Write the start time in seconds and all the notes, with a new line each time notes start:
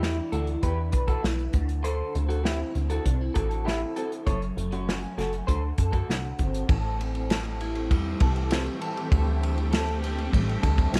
Already playing: E2 E3 D4 E4 G4
0.02 E4, snare
0.32 D2 D4 F#4 A4, closed hi-hat
0.47 closed hi-hat
0.62 E2 E4 G4 B4, kick, closed hi-hat
0.92 B1 B4, kick, closed hi-hat
1.08 F#4 A4, kick, closed hi-hat
1.23 B1 E4, snare
1.39 closed hi-hat
1.53 D2 D3, kick, closed hi-hat
1.69 closed hi-hat
1.83 D3 A4 C5, closed hi-hat
2.15 D2 C4, closed hi-hat
2.29 F#4 A4, closed hi-hat
2.44 E4 G4, snare
2.75 D2 C4, closed hi-hat
2.90 F#4 A4, closed hi-hat
3.05 C2 D4, kick, closed hi-hat
3.21 E4
3.34 A1 F#4 A4, kick, closed hi-hat
3.51 closed hi-hat
3.65 E4 G4, snare
3.96 C4 F#4 A4, closed hi-hat
4.12 closed hi-hat
4.26 F#1 F#2 A4 C#5, kick, closed hi-hat
4.42 closed hi-hat
4.57 F#1 A3, closed hi-hat
4.72 C#4 F#4, closed hi-hat
4.87 C#4, snare
5.03 closed hi-hat
5.18 F#1 A3 F#4 A4, snare, closed hi-hat
5.33 closed hi-hat
5.47 D2 D3 A4 C5, kick, closed hi-hat
5.78 F#2 A4, kick, closed hi-hat
5.92 F#4 A4, kick, closed hi-hat
6.08 C2 F#4, snare
6.24 closed hi-hat
6.38 G1 C4, kick, closed hi-hat
6.54 closed hi-hat
6.68 A1 A2 E3 A3 C4 G4 A4, kick, ride
6.99 C4, ride
7.15 ride
7.30 A4, snare, ride
7.45 ride
7.60 E4, ride
7.75 ride
7.91 E2 G3, kick, ride
8.20 C2 A4, kick, ride
8.36 ride
8.51 C4, snare, ride
8.66 ride
8.81 A4, ride
8.97 ride
9.10 D2 D3 C4 A4, kick, ride
9.41 C4, ride
9.58 ride
9.71 A4, snare, ride
9.88 ride
10.02 G4, ride
10.18 ride
10.32 A1 G3, kick, ride
10.49 ride
10.62 D2 A4, kick, ride
10.78 kick, ride
10.92 C2 C4, snare, ride